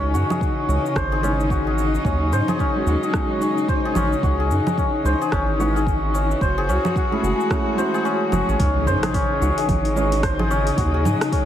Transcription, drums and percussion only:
0.15 cabasa
0.30 low conga, cabasa
0.41 kick, cabasa
0.70 cabasa
0.86 cabasa
0.96 kick, cross-stick, cabasa
1.24 cabasa
1.40 cabasa
1.50 kick, cabasa
1.78 cabasa
1.95 cabasa
2.05 kick, cabasa
2.33 cabasa
2.48 low conga, cabasa
2.59 kick, cabasa
2.87 cabasa
3.03 cabasa
3.14 kick, cross-stick, cabasa
3.42 cabasa
3.58 cabasa
3.69 kick, cabasa
3.95 low conga, cabasa
4.13 cabasa
4.23 kick, cabasa
4.51 cabasa
4.67 low conga, cabasa
4.78 kick, cabasa
5.06 cabasa
5.22 cabasa
5.32 kick, cross-stick, cabasa
5.60 cabasa
5.77 cabasa
5.87 kick, cabasa
6.15 cabasa
6.31 cabasa
6.41 kick, cabasa
6.70 cabasa
6.85 low conga, cabasa
6.96 kick, cabasa
7.24 cabasa
7.40 cabasa
7.50 kick, cross-stick, cabasa
7.79 cabasa
7.95 cabasa
8.06 cabasa
8.32 low conga, cabasa
8.49 cabasa
8.59 kick, open hi-hat, cabasa
8.87 cabasa
9.03 cross-stick, open hi-hat, low conga, cabasa
9.14 kick, open hi-hat, cabasa
9.42 cabasa
9.58 open hi-hat, cabasa
9.69 kick, open hi-hat, low conga, cabasa
9.85 open hi-hat
9.97 cabasa
10.12 open hi-hat, cabasa
10.23 kick, cross-stick, open hi-hat, cabasa
10.39 low conga
10.51 cabasa
10.67 open hi-hat, cabasa
10.78 kick, open hi-hat, cabasa
11.05 low conga, cabasa
11.21 cross-stick, open hi-hat, cabasa
11.32 kick, open hi-hat, cabasa

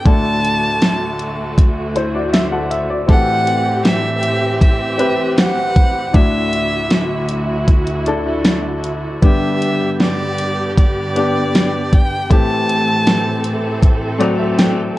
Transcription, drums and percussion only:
0.06 kick, closed hi-hat
0.45 closed hi-hat
0.82 snare, closed hi-hat
1.19 closed hi-hat
1.58 kick, closed hi-hat
1.96 closed hi-hat
2.34 snare, closed hi-hat
2.71 closed hi-hat
3.09 kick, closed hi-hat
3.47 closed hi-hat
3.85 snare, closed hi-hat
4.23 closed hi-hat
4.61 kick, closed hi-hat
4.99 closed hi-hat
5.38 snare, closed hi-hat
5.76 kick, closed hi-hat
6.14 kick, closed hi-hat
6.53 closed hi-hat
6.90 snare, closed hi-hat
7.29 closed hi-hat
7.68 kick, closed hi-hat
7.87 closed hi-hat
8.06 closed hi-hat
8.45 snare, closed hi-hat
8.84 closed hi-hat
9.23 kick, closed hi-hat
9.62 closed hi-hat
10.00 snare, closed hi-hat
10.38 closed hi-hat
10.77 kick, closed hi-hat
11.16 closed hi-hat
11.55 snare, closed hi-hat
11.93 kick, closed hi-hat
12.31 kick, closed hi-hat
12.69 closed hi-hat
13.07 snare, closed hi-hat
13.44 closed hi-hat
13.82 kick, closed hi-hat
14.21 closed hi-hat
14.59 snare, closed hi-hat

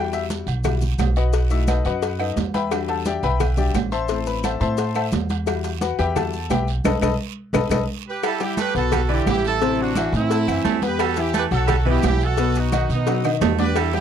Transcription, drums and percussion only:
0.13 cowbell, high conga, low agogo, maracas
0.30 cowbell, high conga, low timbale, short guiro, maracas
0.47 high conga, low agogo, short guiro, maracas
0.64 cowbell, high conga, low conga, low agogo, long guiro, claves, maracas
0.81 high conga, low conga, maracas
0.99 cowbell, high conga, low timbale, low agogo, short guiro, claves, maracas
1.16 short guiro, maracas
1.33 cowbell, high conga, low agogo, long guiro, maracas
1.50 high conga, maracas
1.67 cowbell, high conga, low timbale, low agogo, short guiro, claves, maracas
1.85 high conga, short guiro, maracas
2.02 cowbell, high conga, low agogo, long guiro, maracas
2.19 high conga, low agogo, claves
2.37 cowbell, high conga, low timbale, short guiro, maracas
2.54 cowbell, high conga, low agogo, short guiro, maracas
2.71 cowbell, high conga, low agogo, long guiro, claves, maracas
2.88 cowbell, high conga, low agogo
3.05 cowbell, high conga, low timbale, short guiro, maracas
3.23 high conga, low agogo, short guiro, maracas
3.40 cowbell, high conga, low conga, low agogo, long guiro, claves, maracas
3.57 high conga, low conga, maracas
3.74 cowbell, high conga, low timbale, low agogo, short guiro, claves, maracas
3.92 high conga, short guiro, maracas
4.08 cowbell, high conga, low agogo, long guiro, maracas
4.26 high conga, maracas
4.44 cowbell, high conga, low timbale, low agogo, short guiro, claves, maracas
4.61 high conga, short guiro, maracas
4.78 cowbell, high conga, low agogo, long guiro, maracas
4.95 high conga, low agogo, claves, maracas
5.12 cowbell, high conga, low timbale, short guiro, maracas
5.29 cowbell, high conga, low agogo, short guiro, maracas
5.47 cowbell, high conga, low agogo, long guiro, claves, maracas
5.64 cowbell, high conga, low agogo, maracas
5.81 cowbell, high conga, low timbale, short guiro, maracas
5.98 high conga, low agogo, short guiro, maracas
6.16 cowbell, high conga, low conga, low agogo, long guiro, claves, maracas
6.33 high conga, maracas
6.50 cowbell, high conga, low timbale, low agogo, short guiro, claves, maracas
6.68 high conga, short guiro, maracas
6.85 cowbell, high conga, high timbale, long guiro, claves, maracas
7.02 cowbell, high conga, high timbale, long guiro, claves, maracas
7.54 cowbell, high conga, high timbale, long guiro, claves, maracas
7.71 cowbell, high conga, high timbale, long guiro, claves, maracas
8.23 cowbell, high conga, low agogo, long guiro, claves, maracas
8.40 cowbell, high conga, low agogo, maracas
8.57 cowbell, high conga, low timbale, short guiro, maracas
8.75 high conga, low agogo, short guiro, maracas
8.92 cowbell, high conga, low conga, low agogo, long guiro, claves, maracas
9.09 high conga
9.27 cowbell, high conga, low timbale, low agogo, short guiro, claves, maracas
9.44 short guiro, maracas
9.61 cowbell, high conga, low agogo, long guiro, maracas
9.79 high conga
9.95 cowbell, high conga, low timbale, low agogo, short guiro, claves, maracas
10.13 high conga, short guiro, maracas
10.31 cowbell, high conga, low agogo, long guiro, maracas
10.48 high conga, low agogo, claves, maracas
10.65 cowbell, high conga, low timbale, short guiro, maracas
10.82 cowbell, high conga, low agogo, short guiro, maracas
10.99 cowbell, high conga, low agogo, long guiro, claves, maracas
11.16 cowbell, high conga, low agogo, maracas
11.34 cowbell, high conga, low timbale, short guiro, maracas
11.51 high conga, low agogo, short guiro, maracas
11.68 cowbell, high conga, low conga, low agogo, long guiro, claves, maracas
11.86 high conga, low conga
12.03 cowbell, high conga, low timbale, low agogo, short guiro, claves, maracas
12.20 high conga, short guiro, maracas
12.38 cowbell, high conga, low agogo, long guiro, maracas
12.55 high conga, maracas
12.72 cowbell, high conga, low timbale, low agogo, short guiro, claves, maracas
12.90 high conga, short guiro, maracas
13.07 cowbell, high conga, high timbale, low agogo, long guiro, maracas
13.24 high conga, high timbale, low agogo, claves, maracas
13.41 cowbell, high conga, low timbale, short guiro, maracas
13.59 cowbell, high conga, low timbale, low agogo, short guiro, maracas
13.76 cowbell, high conga, low agogo, long guiro, claves, maracas
13.93 cowbell, high conga, low agogo

